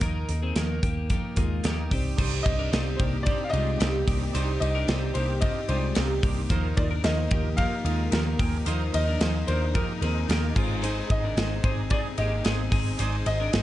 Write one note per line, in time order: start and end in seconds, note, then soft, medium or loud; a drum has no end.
0.01 0.24 D#2 loud
0.01 0.28 D#3 medium
0.01 0.29 F3 medium
0.01 0.29 A#3 loud
0.01 0.40 D#4 medium
0.01 0.29 D#4 medium
0.01 0.40 A#4 loud
0.01 0.28 A#4 loud
0.01 kick loud
0.01 closed hi-hat medium
0.29 0.51 D#2 medium
0.29 0.56 A#3 medium
0.29 0.57 D#4 medium
0.29 0.56 A#4 medium
0.29 closed hi-hat medium
0.43 0.56 C4 medium
0.43 0.56 G#4 medium
0.56 0.78 D#2 loud
0.56 0.83 D#3 medium
0.56 0.84 F3 medium
0.56 0.84 A#3 medium
0.56 0.84 D#4 medium
0.56 0.83 D#4 medium
0.56 0.82 A#4 medium
0.56 0.82 A#4 loud
0.56 snare loud
0.56 closed hi-hat medium
0.83 1.16 D#2 medium
0.83 1.10 A#3 medium
0.83 1.09 A#3 medium
0.83 1.11 D#4 medium
0.83 1.09 G4 medium
0.83 1.10 A#4 medium
0.83 kick loud
0.83 closed hi-hat medium
1.10 1.37 F3 medium
1.10 1.38 A#3 medium
1.10 1.37 D#4 medium
1.10 1.37 G4 medium
1.10 1.35 A#4 medium
1.10 kick medium
1.10 closed hi-hat medium
1.36 1.59 D#2 loud
1.36 1.65 G#3 medium
1.36 1.63 A#3 medium
1.36 1.64 D#4 medium
1.36 1.65 F4 medium
1.36 1.64 A#4 medium
1.36 kick medium
1.36 closed hi-hat medium
1.63 1.87 D#2 loud
1.63 1.91 D#3 medium
1.63 1.91 F3 medium
1.63 1.92 A#3 loud
1.63 1.92 A#3 medium
1.63 1.92 D#4 medium
1.63 1.91 G4 medium
1.63 1.92 A#4 loud
1.63 snare loud
1.63 closed hi-hat medium
1.91 2.14 C2 loud
1.91 2.19 C4 medium
1.91 2.18 C4 medium
1.91 2.18 D#4 medium
1.91 2.19 G4 medium
1.91 2.18 G4 medium
1.91 2.18 D5 medium
1.91 kick medium
1.91 open hi-hat medium
2.17 2.41 C2 loud
2.17 2.45 C3 medium
2.17 6.47 C3 medium
2.17 2.45 G3 medium
2.17 2.46 C4 medium
2.17 6.47 C4 medium
2.17 2.35 D4 loud
2.17 2.36 D#4 medium
2.17 6.47 D#4 medium
2.17 2.46 D#4 medium
2.17 2.57 D#4 medium
2.17 6.47 G4 medium
2.17 2.45 G4 medium
2.17 2.36 C5 loud
2.17 2.57 C5 medium
2.17 2.44 D5 loud
2.17 kick medium
2.17 crash loud
2.43 2.68 C2 medium
2.43 2.63 D4 medium
2.43 2.63 D#4 medium
2.43 2.73 G4 medium
2.43 2.63 C5 medium
2.43 2.73 D5 medium
2.43 3.00 D#5 loud
2.43 kick medium
2.43 ride medium
2.48 2.72 C4 soft
2.48 2.72 D#4 soft
2.59 2.72 D4 medium
2.59 2.71 A#4 medium
2.71 2.95 C2 medium
2.71 3.00 C3 medium
2.71 3.00 G3 medium
2.71 3.00 C4 medium
2.71 2.89 D4 medium
2.71 2.90 D#4 medium
2.71 3.00 D#4 medium
2.71 2.99 D#4 medium
2.71 2.99 G4 medium
2.71 2.99 C5 medium
2.71 2.90 C5 medium
2.71 2.97 D5 medium
2.71 snare loud
2.71 ride medium
2.96 3.33 C2 medium
2.96 3.27 A#3 medium
2.96 3.17 D4 medium
2.96 3.17 D#4 medium
2.96 3.26 G4 medium
2.96 3.26 G4 soft
2.96 3.17 A#4 medium
2.96 3.03 C5 medium
2.96 3.26 D5 medium
2.96 kick loud
2.96 ride medium
3.01 3.24 C4 soft
3.01 3.25 D#4 soft
3.23 3.53 C4 medium
3.23 3.44 D4 medium
3.23 3.44 D#4 medium
3.23 3.54 D#4 medium
3.23 3.53 G4 medium
3.23 3.44 C5 loud
3.23 3.46 D5 medium
3.23 kick medium
3.23 ride medium
3.27 3.54 C4 medium
3.27 3.53 G4 medium
3.27 3.52 D5 medium
3.44 3.53 F5 medium
3.50 3.76 C2 loud
3.50 3.71 D4 medium
3.50 3.71 D#4 medium
3.50 3.80 D5 medium
3.50 4.02 D#5 loud
3.50 ride medium
3.54 3.81 G#3 medium
3.54 3.80 C4 soft
3.54 3.79 D#4 medium
3.54 3.80 F4 medium
3.54 3.80 G4 medium
3.54 3.72 C5 medium
3.78 4.03 C2 loud
3.78 4.07 C3 medium
3.78 4.07 G3 medium
3.78 4.08 C4 medium
3.78 3.97 D4 medium
3.78 3.98 D#4 medium
3.78 4.08 D#4 loud
3.78 4.06 G4 medium
3.78 4.07 G4 medium
3.78 3.98 C5 medium
3.78 4.05 D5 medium
3.78 snare loud
3.78 ride medium
4.06 4.30 C2 loud
4.06 4.35 A#3 medium
4.06 4.33 C4 soft
4.06 4.25 D4 medium
4.06 4.25 D#4 medium
4.06 4.34 D#4 medium
4.06 4.35 G4 medium
4.06 4.34 G4 medium
4.06 4.25 C5 medium
4.06 4.34 D5 medium
4.06 kick loud
4.06 open hi-hat medium
4.06 ride medium
4.33 4.57 C2 medium
4.33 4.61 C3 medium
4.33 4.62 G3 medium
4.33 4.62 C4 medium
4.33 4.52 D4 loud
4.33 4.52 D#4 loud
4.33 4.61 D#4 loud
4.33 4.73 D#4 medium
4.33 4.60 G4 medium
4.33 4.52 C5 loud
4.33 4.73 C5 loud
4.33 4.59 D5 loud
4.33 hi-hat pedal medium
4.33 ride medium
4.60 4.84 C2 loud
4.60 4.87 C4 soft
4.60 4.79 D4 medium
4.60 4.80 D#4 medium
4.60 4.87 D#4 soft
4.60 4.88 G4 medium
4.60 4.80 C5 medium
4.60 4.88 D5 medium
4.60 5.11 D#5 loud
4.60 ride medium
4.75 4.89 D4 medium
4.75 4.89 A#4 medium
4.87 5.11 C2 medium
4.87 5.15 C3 medium
4.87 5.16 G3 medium
4.87 5.16 C4 medium
4.87 5.06 D4 medium
4.87 5.06 D#4 medium
4.87 5.15 D#4 medium
4.87 5.17 D#4 medium
4.87 5.14 G4 medium
4.87 5.07 C5 medium
4.87 5.16 C5 medium
4.87 5.13 D5 medium
4.87 snare loud
4.87 ride medium
5.14 5.49 C2 medium
5.14 5.43 A#3 medium
5.14 5.40 C4 soft
5.14 5.33 D4 medium
5.14 5.33 D#4 medium
5.14 5.42 D#4 soft
5.14 5.42 G4 soft
5.14 5.41 G4 medium
5.14 5.43 C5 medium
5.14 5.34 C5 medium
5.14 5.42 D5 medium
5.14 ride medium
5.41 5.69 C4 medium
5.41 5.70 C4 medium
5.41 5.60 D4 medium
5.41 5.69 D#4 medium
5.41 5.61 D#4 medium
5.41 5.61 F4 loud
5.41 5.69 G4 medium
5.41 5.68 G4 medium
5.41 5.70 D#5 loud
5.41 kick medium
5.41 ride medium
5.45 5.67 D5 medium
5.68 5.92 C2 loud
5.68 5.97 G#3 medium
5.68 5.95 C4 soft
5.68 5.87 D4 medium
5.68 5.87 D#4 medium
5.68 5.96 D#4 soft
5.68 5.96 F4 medium
5.68 5.96 G4 medium
5.68 6.19 C5 medium
5.68 5.87 C5 medium
5.68 5.96 D5 medium
5.68 ride medium
5.95 6.19 C2 loud
5.95 6.23 C3 medium
5.95 6.23 G3 medium
5.95 6.24 C4 medium
5.95 6.14 D4 medium
5.95 6.14 D#4 medium
5.95 6.24 D#4 medium
5.95 6.23 G4 medium
5.95 6.15 A#4 medium
5.95 6.21 D5 medium
5.95 snare loud
5.95 ride medium
6.23 6.46 C2 medium
6.23 6.51 A#3 medium
6.23 6.50 C4 soft
6.23 6.42 D4 medium
6.23 6.42 D#4 medium
6.23 6.50 D#4 soft
6.23 6.51 G4 medium
6.23 6.42 C5 medium
6.23 6.50 D5 medium
6.23 kick loud
6.23 open hi-hat medium
6.23 ride medium
6.49 6.73 D#2 loud
6.49 6.77 D#3 medium
6.49 6.78 F3 medium
6.49 10.52 F3 medium
6.49 8.65 A#3 medium
6.49 6.78 A#3 loud
6.49 6.68 D#4 loud
6.49 13.62 D#4 loud
6.49 6.76 D#4 loud
6.49 6.89 D#4 medium
6.49 6.68 F4 loud
6.49 6.69 A#4 loud
6.49 6.75 A#4 loud
6.49 6.89 C5 loud
6.49 kick loud
6.49 hi-hat pedal medium
6.49 ride medium
6.76 7.00 D#2 loud
6.76 7.04 A#3 soft
6.76 6.95 D#4 medium
6.76 7.04 D#4 medium
6.76 6.95 F4 medium
6.76 7.04 A#4 medium
6.76 6.96 A#4 medium
6.76 6.83 D5 medium
6.76 kick medium
6.76 ride medium
6.91 7.05 D4 medium
6.91 7.04 A#4 medium
7.03 7.27 D#2 loud
7.03 7.31 D#3 medium
7.03 7.32 F3 medium
7.03 7.32 A#3 medium
7.03 7.22 D#4 medium
7.03 7.32 D#4 medium
7.03 7.31 D#4 medium
7.03 7.22 F4 medium
7.03 7.23 A#4 medium
7.03 7.30 A#4 medium
7.03 7.32 C5 medium
7.03 7.60 D#5 loud
7.03 snare loud
7.03 ride medium
7.30 7.65 D#2 medium
7.30 7.58 A#3 medium
7.30 7.49 D#4 medium
7.30 7.59 D#4 soft
7.30 7.49 F4 medium
7.30 7.57 G4 medium
7.30 7.58 A#4 medium
7.30 7.50 A#4 medium
7.30 kick loud
7.30 ride medium
7.56 7.86 F3 medium
7.56 7.86 A#3 medium
7.56 7.75 D#4 medium
7.56 7.76 F4 medium
7.56 7.85 G4 medium
7.56 7.76 A#4 loud
7.56 8.14 F5 loud
7.56 kick medium
7.56 ride medium
7.60 7.85 D#4 medium
7.60 7.84 A#4 medium
7.85 8.07 D#2 loud
7.85 8.12 G#3 medium
7.85 8.13 A#3 soft
7.85 8.03 D#4 medium
7.85 8.13 D#4 medium
7.85 8.03 F4 medium
7.85 8.12 F4 medium
7.85 8.13 A#4 medium
7.85 8.04 A#4 medium
7.85 ride medium
8.10 8.35 D#2 loud
8.10 8.40 D#3 medium
8.10 8.40 F3 medium
8.10 8.39 A#3 medium
8.10 8.40 A#3 medium
8.10 8.29 D#4 medium
8.10 8.30 F4 medium
8.10 8.38 G4 medium
8.10 8.50 A#4 medium
8.10 8.30 C5 medium
8.10 snare loud
8.10 ride medium
8.15 8.39 D#4 medium
8.15 8.38 A#4 loud
8.39 8.62 D#2 medium
8.39 8.67 A#3 medium
8.39 8.66 A#3 soft
8.39 8.57 D#4 medium
8.39 8.67 D#4 medium
8.39 8.57 F4 medium
8.39 8.67 G4 medium
8.39 8.58 G#4 medium
8.39 8.66 A#4 medium
8.39 kick medium
8.39 open hi-hat medium
8.39 ride medium
8.65 8.89 D#2 loud
8.65 8.94 D#3 medium
8.65 8.94 F3 medium
8.65 13.62 G#3 medium
8.65 8.94 A#3 medium
8.65 8.84 D#4 loud
8.65 9.05 D#4 medium
8.65 8.93 D#4 loud
8.65 8.84 F4 loud
8.65 8.92 A#4 medium
8.65 8.84 C5 loud
8.65 9.05 C5 loud
8.65 hi-hat pedal medium
8.65 ride medium
8.92 9.16 D#2 loud
8.92 9.21 A#3 soft
8.92 9.11 D#4 medium
8.92 9.21 D#4 soft
8.92 9.11 F4 medium
8.92 9.20 A#4 medium
8.92 9.11 A#4 medium
8.92 9.50 D#5 loud
8.92 ride medium
9.08 9.21 D4 medium
9.08 9.21 A#4 medium
9.20 9.43 D#2 loud
9.20 9.48 D#3 medium
9.20 9.48 F3 medium
9.20 9.49 A#3 medium
9.20 9.38 D#4 medium
9.20 9.48 D#4 medium
9.20 9.49 D#4 medium
9.20 9.39 F4 medium
9.20 9.39 G#4 medium
9.20 9.46 A#4 medium
9.20 9.48 C5 medium
9.20 snare loud
9.20 ride medium
9.47 9.81 D#2 loud
9.47 9.74 A#3 soft
9.47 9.76 D4 medium
9.47 9.65 D#4 medium
9.47 9.75 D#4 medium
9.47 9.66 F4 medium
9.47 9.75 A#4 medium
9.47 9.74 A#4 medium
9.47 9.75 C5 medium
9.47 9.66 C5 medium
9.47 ride medium
9.74 10.02 F3 medium
9.74 10.02 A#3 medium
9.74 9.93 D#4 medium
9.74 10.02 D#4 medium
9.74 9.93 F4 medium
9.74 9.93 G4 loud
9.74 10.51 A#4 medium
9.74 10.02 A#4 medium
9.74 10.00 A#4 medium
9.74 kick medium
9.74 ride medium
10.00 10.24 D#2 loud
10.00 10.28 A#3 soft
10.00 10.30 C4 medium
10.00 10.19 D#4 medium
10.00 10.29 D#4 medium
10.00 10.19 F4 medium
10.00 10.29 G#4 medium
10.00 10.29 A#4 medium
10.00 10.20 A#4 medium
10.00 ride medium
10.28 10.51 D#2 loud
10.28 10.56 D#3 medium
10.28 10.56 F3 medium
10.28 10.56 A#3 medium
10.28 10.57 A#3 medium
10.28 10.46 D#4 medium
10.28 10.55 D#4 medium
10.28 10.47 F4 medium
10.28 10.56 G4 medium
10.28 10.47 A#4 medium
10.28 10.54 A#4 medium
10.28 snare loud
10.28 ride medium
10.55 11.00 G#1 medium
10.55 10.83 G#3 medium
10.55 13.62 C4 medium
10.55 10.81 C4 medium
10.55 10.99 D#4 medium
10.55 10.82 D#4 medium
10.55 10.83 F4 medium
10.55 10.82 G#4 medium
10.55 10.99 G#4 medium
10.55 10.99 C5 loud
10.55 kick loud
10.55 crash medium
10.82 11.09 G#3 medium
10.82 11.10 C4 loud
10.82 11.10 D#4 loud
10.82 11.22 D#4 medium
10.82 11.07 G#4 loud
10.82 11.21 C5 loud
10.82 hi-hat pedal medium
10.82 ride medium
11.08 11.32 G#1 loud
11.08 11.36 C4 soft
11.08 11.27 D#4 medium
11.08 11.37 D#4 medium
11.08 11.36 G#4 medium
11.08 11.27 G#4 medium
11.08 11.28 C5 medium
11.08 11.66 D#5 loud
11.08 kick medium
11.08 ride medium
11.24 11.37 D4 medium
11.24 11.37 A#4 medium
11.35 11.59 G#1 loud
11.35 11.64 G#3 medium
11.35 11.64 C4 medium
11.35 11.53 D#4 medium
11.35 11.64 D#4 medium
11.35 11.54 G#4 medium
11.35 11.54 C5 medium
11.35 11.64 C5 medium
11.35 snare loud
11.35 ride medium
11.39 11.63 G#4 medium
11.63 11.97 G#1 medium
11.63 11.92 C4 medium
11.63 11.91 C4 soft
11.63 11.81 D#4 medium
11.63 11.92 D#4 soft
11.63 11.82 G#4 medium
11.63 11.91 G#4 medium
11.63 11.69 C5 medium
11.63 11.82 D5 medium
11.63 kick loud
11.63 ride medium
11.89 12.18 G#3 medium
11.89 12.18 C4 medium
11.89 12.08 D#4 medium
11.89 12.08 G#4 medium
11.89 12.18 G#4 medium
11.89 11.97 D5 medium
11.89 12.08 D#5 loud
11.89 kick medium
11.89 ride medium
11.93 12.19 C4 medium
11.93 12.18 D#4 medium
11.93 12.17 G#4 medium
12.17 12.40 G#1 medium
12.17 12.46 A#3 medium
12.17 12.44 C4 soft
12.17 12.35 D#4 medium
12.17 12.45 D#4 medium
12.17 12.45 G4 medium
12.17 12.45 G#4 medium
12.17 12.36 G#4 medium
12.17 12.36 C5 medium
12.17 12.68 D#5 medium
12.17 ride medium
12.44 12.67 G#1 loud
12.44 12.72 G#3 medium
12.44 12.72 C4 medium
12.44 12.73 C4 medium
12.44 12.62 D#4 medium
12.44 12.72 D#4 loud
12.44 12.62 G#4 medium
12.44 12.72 G#4 medium
12.44 12.70 G#4 medium
12.44 12.63 C5 medium
12.44 snare loud
12.44 ride medium
12.70 12.94 G#1 medium
12.70 12.98 C4 medium
12.70 13.00 C4 medium
12.70 12.89 D#4 medium
12.70 12.99 D#4 medium
12.70 12.89 G#4 medium
12.70 12.98 G#4 medium
12.70 12.99 G#4 medium
12.70 12.90 C5 medium
12.70 kick loud
12.70 open hi-hat medium
12.70 ride medium
12.97 13.22 G#1 loud
12.97 13.26 G#3 loud
12.97 13.26 C4 medium
12.97 13.16 D#4 loud
12.97 13.26 D#4 medium
12.97 13.38 D#4 medium
12.97 13.16 G#4 loud
12.97 13.25 G#4 loud
12.97 13.37 C5 loud
12.97 13.17 D5 loud
12.97 hi-hat pedal medium
12.97 ride medium
13.25 13.48 G#1 loud
13.25 13.53 C4 soft
13.25 13.43 D#4 medium
13.25 13.54 D#4 medium
13.25 13.44 G#4 medium
13.25 13.53 G#4 medium
13.25 13.44 C5 medium
13.25 13.62 D#5 loud
13.25 ride medium
13.40 13.54 D4 medium
13.40 13.53 A#4 medium
13.52 13.62 G#1 loud
13.52 13.62 G#3 medium
13.52 13.62 C4 medium
13.52 13.62 D#4 medium
13.52 13.62 G#4 medium
13.52 13.62 C5 medium
13.52 snare loud
13.52 ride medium